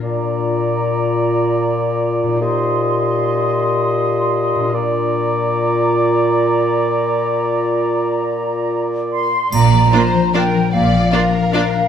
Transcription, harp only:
\new Staff \with { instrumentName = "Harp" } { \time 3/4 \key bes \major \tempo 4 = 151 <bes, d' f' bes'>2.~ | <bes, d' f' bes'>2. | <bes, ees' g' c''>2.~ | <bes, ees' g' c''>2. |
<bes, d' f' bes'>2.~ | <bes, d' f' bes'>2.~ | <bes, d' f' bes'>2.~ | <bes, d' f' bes'>2. |
bes,8 f8 d'8 f8 bes'8 f8 | bes,8 f8 d'8 f8 bes'8 f8 | }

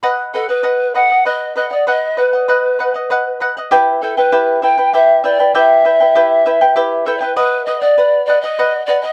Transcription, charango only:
\new Staff \with { instrumentName = "Charango" } { \time 3/4 \key b \phrygian \tempo 4 = 98 <b' dis'' fis''>8 <b' dis'' fis''>16 <dis'' fis''>16 <b' dis'' fis''>8 <b' dis'' fis''>16 <dis'' fis''>16 <b' dis'' fis''>8 <b' dis'' fis''>16 <dis'' fis''>16 | <b' dis'' fis''>8 <b' dis'' fis''>16 <dis'' fis''>16 <b' dis'' fis''>8 <b' dis'' fis''>16 <dis'' fis''>16 <b' dis'' fis''>8 <b' dis'' fis''>16 <dis'' fis''>16 | <e' g' b' e'' g''>8 <e' b' e'' g''>16 <e' b' g''>16 <e' g' b' e'' g''>8 <e' b' e'' g''>16 <e' b' g''>16 <e' g' b' e'' g''>8 <e' b' e'' g''>16 <e' b' g''>16 | <e' g' b' e'' g''>8 <e' b' e'' g''>16 <e' b' g''>16 <e' g' b' e'' g''>8 <e' b' e'' g''>16 <e' b' g''>16 <e' g' b' e'' g''>8 <e' b' e'' g''>16 <e' b' g''>16 |
<b' dis'' fis''>8 <b' dis'' fis''>16 <dis'' fis''>16 <b' fis''>8 <b' dis'' fis''>16 <dis'' fis''>16 <b' dis'' fis''>8 <b' dis'' fis''>16 <dis'' fis''>16 | }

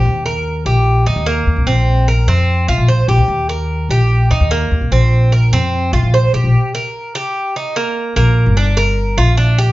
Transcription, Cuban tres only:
\new Staff \with { instrumentName = "Cuban tres" } { \time 4/4 \key bes \major \tempo 4 = 148 g'8 bes'4 g'4 ees'8 bes4 | c'4 bes'8 c'4 f'8 c''8 g'8~ | g'8 bes'4 g'4 ees'8 bes4 | c'4 bes'8 c'4 f'8 c''8 g'8~ |
g'8 bes'4 g'4 ees'8 bes4 | bes4 d'8 bes'4 f'8 d'8 g'8 | }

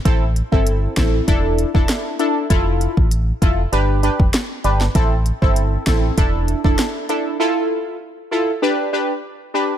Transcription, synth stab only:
\new Staff \with { instrumentName = "Synth stab" } { \time 4/4 \key a \minor \tempo 4 = 98 <c' e' a'>16 r8 <c' e' a'>8. <c' e' a'>8 <d' e' a'>8. <d' e' a'>8. <d' e' a'>8 | <e' f' a'>4 r8 <e' f' a'>16 r16 <d' g' b'>8 <d' g' b'>16 r8. <d' g' b'>16 r16 | <c' e' a'>16 r8 <c' e' a'>8. <c' e' a'>8 <d' e' a'>8. <d' e' a'>8. <d' e' a'>8 | <e' f' a'>4 r8 <e' f' a'>16 r16 <d' g' b'>8 <d' g' b'>16 r8. <d' g' b'>16 r16 | }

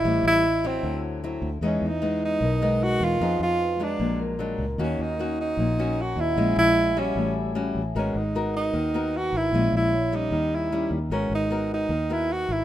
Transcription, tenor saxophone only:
\new Staff \with { instrumentName = "Tenor saxophone" } { \time 4/4 \key gis \minor \tempo 4 = 152 e'8 e'4 c'4 r4. | cis'8 dis'4 dis'4. fis'8 eis'8~ | eis'8 f'4 d'4 r4. | cis'8 dis'4 dis'4. fis'8 e'8~ |
e'8 e'4 cis'4 r4. | cis'8 dis'4 dis'4. fis'8 e'8~ | e'8 e'4 dis'4 e'4 r8 | cis'8 dis'4 dis'4 e'8 fis'8 e'8 | }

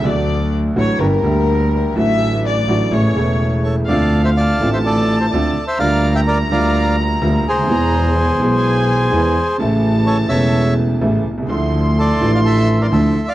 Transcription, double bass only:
\new Staff \with { instrumentName = "Double bass" } { \clef bass \time 4/4 \key d \major \tempo 4 = 126 d,4. a,,8 g,,8 d,4. | a,,4. a,,8 a,,8 e,,4. | \key d \minor d,4. a,,4. d,8 r8 | d,4. d,4. d,8 d,8 |
e,4. b,,4. e,8 r8 | a,,4. e,,4. a,,8 c,8 | d,4. a,,4. d,8 r8 | }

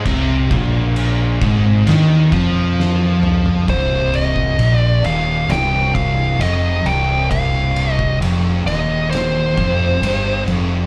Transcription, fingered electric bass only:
\new Staff \with { instrumentName = "Fingered electric bass" } { \clef bass \time 4/4 \key c \minor \tempo 4 = 66 c,8 bes,,4 aes,,8 ees,8 f,4. | c,,4 bes,,8 ees,,8 c,,4 f,,8 c,,8~ | c,,4 f,,8 ees,,4 f,,8 g,,8 f,,8 | }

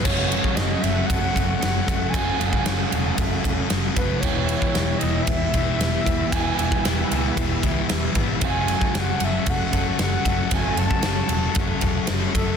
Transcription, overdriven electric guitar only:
\new Staff \with { instrumentName = "Overdriven electric guitar" } { \clef bass \time 4/4 \key fis \dorian \tempo 4 = 114 <fis, cis fis a cis' fis'>1 | <fis, cis fis a cis' fis'>1 | <e, b, e gis b gis'>1 | <e, b, e gis b gis'>1 |
<fis, cis fis a cis' fis'>1 | <fis, cis fis a cis' fis'>1 | }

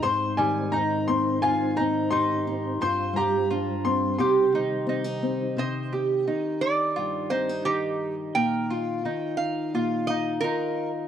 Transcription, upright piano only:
\new Staff \with { instrumentName = "Upright piano" } { \time 4/4 \key c \minor \tempo 4 = 87 c'''8 aes''8 bes''8 c'''8 aes''8 bes''8 c'''4 | c'''8 bes''4 c'''8 c'''4 r4 | r1 | r1 | }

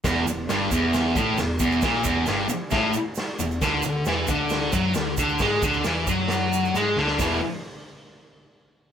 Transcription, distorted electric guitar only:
\new Staff \with { instrumentName = "Distorted electric guitar" } { \clef bass \time 4/4 \key e \mixolydian \tempo 4 = 134 e,8 e,8 g,8 e,4 a,8 e,8 e,8 | ais,8 e,8 g,8 r8 a,8 r4 e,8 | d8 d8 e8 d4 fis8 d8 d8 | gis8 d8 e8 fis4. gis8 d8 |
<e, b, e>8 r2. r8 | }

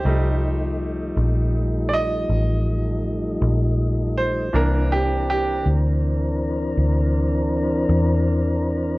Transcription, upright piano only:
<<
  \new Staff \with { instrumentName = "Upright piano" } { \time 12/8 \key f \major \tempo 4. = 53 <g' c''>4. r4 <d'' ees''>2. c''8 | bes'8 g'8 g'8 r1 r8 | }
  \new Staff \with { instrumentName = "Upright piano" } { \time 12/8 \key f \major <g a ees'>1. | <e bes d'>4. r1 r8 | }
>>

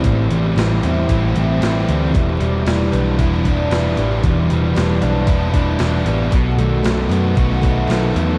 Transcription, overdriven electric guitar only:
\new Staff \with { instrumentName = "Overdriven electric guitar" } { \clef bass \time 4/4 \key e \minor \tempo 4 = 115 <a, e g c' e'>8 g8 e8 c'8 e'8 c'8 e8 g8 | e,8 g8 e8 d'8 e'8 d'8 e8 g8 | e,8 g8 e8 d'8 e'8 d'8 e8 g8 | b,8 a8 dis8 b8 fis'8 b8 dis8 a8 | }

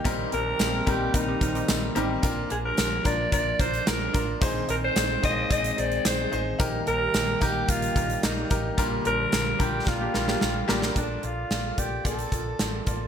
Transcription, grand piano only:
<<
  \new Staff \with { instrumentName = "Grand piano" } { \time 4/4 \key bes \mixolydian \tempo 4 = 110 <g bes c' ees' bes'>8 <g bes c' ees' bes'>8 <g bes c' ees' bes'>8 <g bes c' ees' bes'>8 <g bes c' ees' bes'>8 <g bes c' ees' bes'>8 <g bes c' ees' bes'>8 <g bes c' ees' bes'>8 | <d' f' bes'>8 <d' f' bes'>8 <d' f' bes'>8 <d' f' bes'>8 <d' f' bes'>8 <d' f' bes'>8 <d' f' bes'>8 <d' f' bes'>8 | <ees' aes' c''>8 <ees' aes' c''>8 <ees' aes' c''>8 <ees' aes' c''>8 <ees' aes' c''>8 <ees' aes' c''>8 <ees' aes' c''>8 <ees' aes' c''>8 | <ees' g' bes'>8 <ees' g' bes'>8 <ees' g' bes'>8 <ees' g' bes'>8 <ees' g' bes'>8 <ees' g' bes'>8 <ees' g' bes'>8 <ees' g' bes'>8 |
<g bes d' f' bes'>8 <g bes d' f' bes'>8 <g bes d' f' bes'>8 <g bes d' f' bes'>8 <g bes d' f' bes'>8 <g bes d' f' bes'>8 <g bes d' f' bes'>8 <g bes d' f' bes'>8 | \key bes \major <bes f' a' d''>8 <bes f' a' d''>8 <bes f' a' d''>8 <bes f' a' d''>8 <bes f' a' d''>8 <bes f' a' d''>8 <bes f' a' d''>8 <bes f' a' d''>8 | }
  \new Staff \with { instrumentName = "Grand piano" } { \clef bass \time 4/4 \key bes \mixolydian bes,4. r2 r8 | bes,4. r2 r8 | bes,4. r2 r8 | bes,4. r2 r8 |
bes,4. r2 r8 | \key bes \major bes,4. r2 r8 | }
>>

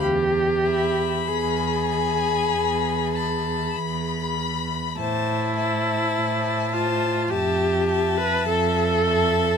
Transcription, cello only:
\new Staff \with { instrumentName = "Cello" } { \clef bass \time 4/4 \key e \phrygian \tempo 4 = 50 e,4 e,4 e,4 e,4 | a,4 a,4 f,4 f,4 | }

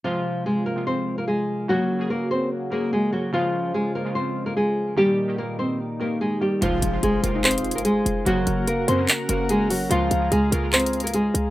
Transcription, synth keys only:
\new Staff \with { instrumentName = "Synth keys" } { \time 4/4 \key f \minor \tempo 4 = 146 <c aes f'>4.~ <c aes f'>16 <c aes f'>2 r16 | <des bes ges'>8. <des bes aes'>4.~ <des bes aes'>16 <des bes aes'>4 <des bes ges'>8 | <des aes f'>4.~ <des aes f'>16 <des aes f'>2 r16 | <ees bes g'>8. <ees bes g'>4.~ <ees bes g'>16 <ees bes g'>4 <ees bes g'>8 |
<c aes f'>8. <c aes f'>8. <c aes f'>16 <c aes ees'>2 r16 | <des bes ges'>4. <des bes des'>16 <des bes des'>8. <des bes ges'>4. | <des aes f'>8. <des aes f'>8. <des aes f'>16 <des aes f'>2 r16 | }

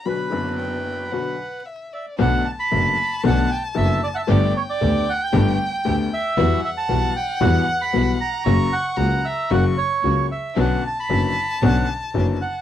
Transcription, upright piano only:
\new Staff \with { instrumentName = "Upright piano" } { \clef bass \time 4/4 \key b \minor \tempo 4 = 114 <b,, b, d fis b fis'>8 <fis,, fis, d fis b d'>4. <b,, b, d fis b fis'>8 r4. | <b,, b, d a b fis'>8 r8 <fis,, fis, d a b fis'>8 r8 <b,, b, d a b fis'>8 r8 <fis,, fis, d a b fis'>8 r8 | <g,, g, d a b g'>8 r8 <d, d a b g'>8 r8 <g,, g, d a b g'>8 r8 <d, d a b g'>8 r8 | <e, e g b fis'>8 r8 <b,, b, e g b fis'>8 r8 <e, e g b fis'>8 r8 <b,, b, e g b fis'>8 r8 |
<fis, cis fis ais fis'>8 r8 <cis, cis fis ais fis'>8 r8 <fis, cis fis ais fis'>8 r8 <cis, cis fis ais fis'>8 r8 | <b,, b, d b cis' fis'>8 r8 <fis,, fis, d b cis' fis'>8 r8 <b,, b, d b cis' fis'>8 r8 <fis,, fis, d b cis' fis'>8 r8 | }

